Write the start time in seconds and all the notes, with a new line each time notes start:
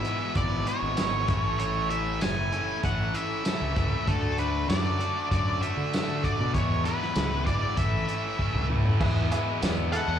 Already playing: E5
0.05 E2 B2 E3 G#3 B3 E4, closed hi-hat
0.35 G#1 E2 B2 E3 G#3 B3 E4 D5, kick, closed hi-hat
0.67 E2 B2 E3 G#3 B3 E4 C#5, closed hi-hat
0.82 G#1
0.97 E2 B2 E3 G#3 B3 E4, snare, closed hi-hat, tambourine
1.28 A1 A2 E3 A3 C#4 E4, kick, closed hi-hat
1.60 A2 E3 A3 C#4 E4 C#5, closed hi-hat
1.90 A2 E3 A3 C#4 E4 E5, closed hi-hat
2.21 F#1 A2 E3 A3 C#4 E4 G#5, snare, closed hi-hat, tambourine
2.52 A2 E3 A3 C#4 E4, closed hi-hat
2.83 A1 A2 E3 A3 C#4 E4 F#5, kick, closed hi-hat
3.14 A2 E3 A3 C#4 E4 E5, closed hi-hat
3.44 A2 E3 A3 C#4 E4, snare, closed hi-hat, tambourine
3.61 C#2
3.76 A2 E3 A3 C#4 E4, kick, closed hi-hat
4.07 D2 D3 A3 D4 F#4 A4, kick, closed hi-hat
4.38 D3 A3 D4 F#4 B4, closed hi-hat
4.69 F#2 D3 A3 D4 F#4 D5, snare, closed hi-hat, tambourine
5.00 D3 A3 D4 F#4, closed hi-hat
5.31 F#2 D3 A3 D4 F#4 D5, kick, closed hi-hat
5.61 D3 A3 D4 F#4 E5, closed hi-hat
5.77 D3
5.92 D3 A3 D4 F#4, snare, closed hi-hat, tambourine
6.23 D3 A3 D4 F#4 D5, kick, closed hi-hat
6.40 B2
6.54 E2 B2 E3 G#3 B3 E4 C#5, kick, closed hi-hat
6.84 E2 B2 E3 G#3 B3 E4 B4, closed hi-hat
7.02 snare
7.15 C#2 E2 B2 E3 G#3 B3 E4, snare, closed hi-hat, tambourine
7.46 E2 B2 E3 G#3 B3 E4 D5, kick, closed hi-hat
7.76 A1 A2 E3 A3 C#4 E4 E5, kick, closed hi-hat
8.08 A2 E3 A3 C#4 E4, closed hi-hat
8.39 A2 E3 A3 C#4 E4, kick
8.54 C#2, mid tom
8.70 A2 E3 A3 C#4 E4, mid tom
8.85 floor tom
9.00 E2 B2 E3 G#3 B3 E4 G#4 B4 E5 G#5, kick, crash
9.31 E2 B2 E3 G#3 B3 E4 G#4 B4 E5, closed hi-hat
9.62 E2 B2 E3 G#3 B3 E4 G#4 B4 E5, snare, closed hi-hat, tambourine
9.92 E2 B2 E3 G#3 B3 E4 G#4 A4 B4 E5 F#5, closed hi-hat
10.08 E2